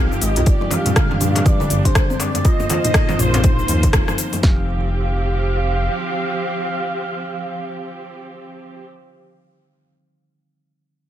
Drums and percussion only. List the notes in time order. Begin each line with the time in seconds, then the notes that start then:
0.11 djembe tone, shaker
0.21 open hi-hat, shaker
0.36 closed hi-hat, muted conga, djembe tone, shaker
0.46 kick, closed hi-hat, shaker
0.62 muted conga, djembe tone
0.70 open hi-hat, djembe slap, low conga, shaker
0.86 closed hi-hat, mid tom, muted conga, djembe tone, shaker
0.96 kick, cross-stick, closed hi-hat, high conga, shaker
1.11 muted conga, djembe tone, low conga
1.21 mid tom, open hi-hat, high conga, djembe bass, shaker
1.36 closed hi-hat, djembe slap, djembe tone, shaker
1.45 kick, closed hi-hat, muted conga, high conga, low conga, shaker
1.61 djembe tone, shaker
1.70 open hi-hat, muted conga, djembe bass, shaker
1.85 kick, closed hi-hat, djembe tone, shaker
1.95 kick, cross-stick, closed hi-hat, muted conga, shaker
2.10 djembe tone, shaker
2.20 open hi-hat, djembe slap, shaker
2.35 closed hi-hat, muted conga, djembe tone, shaker
2.45 kick, closed hi-hat, high conga, shaker
2.60 muted conga, djembe tone, shaker
2.70 open hi-hat, djembe slap, low conga, shaker
2.84 closed hi-hat, mid tom, muted conga, djembe tone, shaker
2.94 kick, cross-stick, closed hi-hat, high conga, shaker
3.09 muted conga, djembe slap, djembe tone, low conga, shaker
3.19 mid tom, open hi-hat, high conga, djembe bass, shaker
3.34 closed hi-hat, djembe slap, djembe tone, shaker
3.44 kick, closed hi-hat, mid tom, muted conga, high conga, shaker
3.59 djembe tone, shaker
3.68 open hi-hat, muted conga, djembe bass, shaker
3.83 kick, closed hi-hat, djembe tone, shaker
3.93 kick, cross-stick, closed hi-hat, muted conga, low conga, shaker
4.08 cross-stick, djembe tone, shaker
4.18 open hi-hat, shaker
4.33 open hi-hat, muted conga, djembe tone, shaker
4.43 kick, snare